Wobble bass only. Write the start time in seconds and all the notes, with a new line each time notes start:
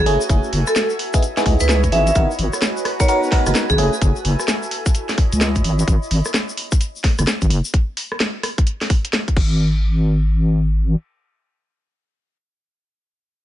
0.06 F#1
0.29 F#1
0.53 F#1
1.46 C#2
1.60 C#2
1.92 G#1
2.16 G#1
2.39 G#1
3.47 F#1
3.70 G#1
3.78 F#1
4.02 F#1
4.25 F#1
5.33 C#2
5.64 G#1
5.88 G#1
6.11 G#1
7.19 F#1
7.42 G#1
7.50 F#1
9.37 G#1